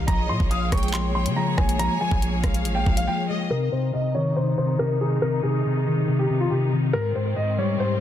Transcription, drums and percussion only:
0.08 kick loud
0.08 closed hi-hat medium
0.40 kick loud
0.51 closed hi-hat medium
0.72 kick loud
0.72 cross-stick loud
0.72 closed hi-hat medium
0.78 closed hi-hat medium
0.83 closed hi-hat medium
0.88 closed hi-hat soft
0.94 clap loud
0.94 closed hi-hat medium
1.26 closed hi-hat medium
1.58 kick medium
1.58 cross-stick loud
1.69 closed hi-hat medium
1.79 closed hi-hat medium
2.11 kick loud
2.22 closed hi-hat medium
2.44 kick loud
2.44 cross-stick loud
2.44 closed hi-hat medium
2.54 closed hi-hat medium
2.65 closed hi-hat medium
2.86 kick loud
2.97 closed hi-hat medium

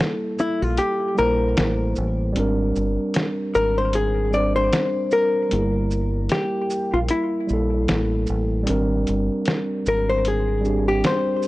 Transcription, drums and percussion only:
0.01 snare loud
0.39 shaker soft
0.77 closed hi-hat medium
1.18 shaker soft
1.57 snare loud
1.57 closed hi-hat medium
1.96 shaker soft
2.36 closed hi-hat medium
2.76 shaker soft
3.14 snare medium
3.14 closed hi-hat medium
3.55 shaker soft
3.93 closed hi-hat medium
4.33 shaker soft
4.73 snare loud
4.73 closed hi-hat medium
5.11 shaker soft
5.51 closed hi-hat medium
5.91 shaker soft
6.29 snare medium
6.29 closed hi-hat medium
6.70 shaker medium
7.08 closed hi-hat medium
7.49 shaker soft
7.88 snare loud
7.88 closed hi-hat medium
8.27 shaker soft
8.67 closed hi-hat medium
9.07 closed hi-hat soft
9.07 shaker soft
9.45 snare medium
9.45 closed hi-hat medium
9.86 shaker medium
10.25 closed hi-hat medium
10.65 shaker soft
11.04 snare medium
11.04 closed hi-hat medium
11.42 shaker soft

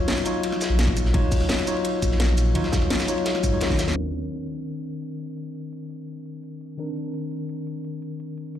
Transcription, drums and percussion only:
0.08 snare loud
0.08 closed hi-hat medium
0.08 ride medium
0.25 closed hi-hat medium
0.25 ride medium
0.25 shaker medium
0.43 closed hi-hat medium
0.43 ride medium
0.52 snare soft
0.61 snare loud
0.61 closed hi-hat medium
0.61 ride medium
0.61 shaker medium
0.79 snare loud
0.79 closed hi-hat medium
0.79 ride medium
0.88 kick medium
0.88 snare soft
0.97 closed hi-hat medium
0.97 ride medium
0.97 shaker medium
1.05 snare soft
1.14 kick loud
1.14 closed hi-hat medium
1.14 ride loud
1.32 kick loud
1.32 closed hi-hat medium
1.32 open hi-hat medium
1.32 shaker medium
1.41 snare soft
1.49 snare loud
1.49 closed hi-hat medium
1.49 ride loud
1.58 ride soft
1.67 closed hi-hat medium
1.67 ride medium
1.67 shaker medium
1.77 ride soft
1.84 closed hi-hat loud
1.84 ride medium
2.02 kick medium
2.02 closed hi-hat medium
2.02 ride medium
2.02 shaker medium
2.11 snare soft
2.20 snare loud
2.20 closed hi-hat medium
2.20 ride medium
2.29 snare soft
2.29 ride soft
2.38 closed hi-hat medium
2.38 ride medium
2.38 shaker medium
2.55 closed hi-hat loud
2.55 ride medium
2.64 snare soft
2.73 kick loud
2.73 snare loud
2.73 closed hi-hat medium
2.73 ride medium
2.73 shaker medium
2.82 snare soft
2.82 ride soft
2.90 snare loud
2.90 closed hi-hat loud
2.90 ride medium
2.99 snare loud
2.99 ride medium
2.99 shaker soft
3.08 closed hi-hat medium
3.08 ride soft
3.08 shaker medium
3.18 ride medium
3.26 snare loud
3.26 closed hi-hat loud
3.26 ride medium
3.35 snare soft
3.35 ride soft
3.43 kick medium
3.43 closed hi-hat medium
3.43 ride medium
3.43 shaker medium
3.60 snare medium
3.60 snare loud
3.60 closed hi-hat medium
3.60 ride medium
3.70 kick medium
3.70 snare medium
3.79 snare loud
3.79 closed hi-hat medium
3.79 ride medium
3.79 shaker medium
3.88 snare medium
4.32 closed hi-hat medium
4.49 closed hi-hat medium
4.67 closed hi-hat medium
4.85 closed hi-hat medium
5.02 closed hi-hat medium
5.20 closed hi-hat medium
5.37 closed hi-hat medium
5.55 closed hi-hat medium
5.73 closed hi-hat medium
5.90 closed hi-hat medium
6.08 closed hi-hat medium
6.26 closed hi-hat medium
6.43 closed hi-hat medium
6.61 closed hi-hat medium
6.79 closed hi-hat medium
6.96 closed hi-hat medium
7.14 closed hi-hat medium
7.32 closed hi-hat medium
7.49 closed hi-hat medium
7.67 closed hi-hat medium
7.85 closed hi-hat medium
8.02 closed hi-hat medium
8.20 closed hi-hat medium
8.38 closed hi-hat medium
8.55 closed hi-hat medium

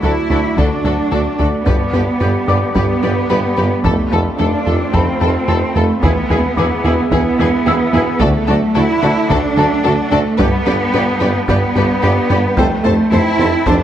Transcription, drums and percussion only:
0.57 taiko medium
1.66 taiko medium
2.75 taiko medium
3.85 taiko medium
4.94 taiko medium
6.03 taiko medium
7.12 taiko medium
8.20 taiko medium
9.30 taiko medium
10.39 taiko medium
11.48 taiko medium
12.57 taiko medium
13.66 taiko medium

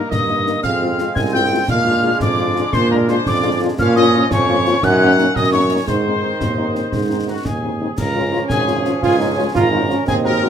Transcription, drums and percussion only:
0.12 concert bass drum medium
0.12 snare medium
0.47 snare medium
0.64 concert bass drum medium
0.64 snare medium
0.99 snare medium
1.16 concert bass drum medium
1.16 snare medium
1.68 concert bass drum medium
1.68 snare medium
1.68 crash soft
2.20 concert bass drum loud
2.20 snare medium
2.56 snare medium
2.73 concert bass drum medium
2.73 snare medium
3.08 snare medium
3.26 concert bass drum medium
3.26 snare medium
3.79 concert bass drum medium
3.79 snare medium
3.79 crash soft
4.31 concert bass drum medium
4.31 snare loud
4.65 snare medium
4.83 concert bass drum medium
4.83 snare medium
5.19 snare medium
5.36 concert bass drum loud
5.36 snare medium
5.88 concert bass drum medium
5.88 snare medium
5.88 crash soft
6.41 concert bass drum medium
6.41 snare medium
6.75 snare medium
6.92 concert bass drum medium
6.92 snare medium
7.45 concert bass drum medium
7.45 snare medium
7.98 concert bass drum medium
7.98 snare medium
7.98 crash medium
8.50 concert bass drum medium
8.50 snare medium
8.68 snare medium
8.85 snare medium
9.03 concert bass drum medium
9.03 snare medium
9.55 concert bass drum medium
9.55 snare medium
9.90 snare soft
10.08 concert bass drum medium
10.08 snare medium
10.08 crash soft

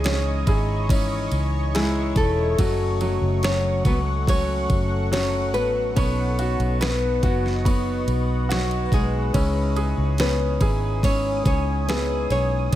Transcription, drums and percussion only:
0.04 snare loud
0.04 ride medium
0.47 kick medium
0.47 ride medium
0.89 kick medium
0.89 ride medium
1.32 ride medium
1.75 snare medium
1.75 ride medium
2.16 kick medium
2.16 ride medium
2.58 kick medium
2.58 ride medium
3.01 ride medium
3.43 snare loud
3.43 ride medium
3.85 kick medium
3.85 ride medium
4.27 kick medium
4.27 ride medium
4.70 kick medium
4.70 ride medium
5.13 snare loud
5.13 ride medium
5.54 ride medium
5.97 kick medium
5.97 ride medium
6.39 ride medium
6.60 ride soft
6.81 snare loud
6.81 ride medium
7.23 kick medium
7.23 ride medium
7.46 snare soft
7.65 kick medium
7.65 ride medium
8.08 ride medium
8.51 snare loud
8.51 ride medium
8.71 ride soft
8.92 kick medium
8.92 ride medium
9.34 kick medium
9.34 ride medium
9.76 ride medium
10.18 snare loud
10.18 ride medium
10.61 kick medium
10.61 ride medium
11.03 kick medium
11.03 ride medium
11.45 kick medium
11.45 ride medium
11.89 snare loud
11.89 ride medium
12.30 ride medium

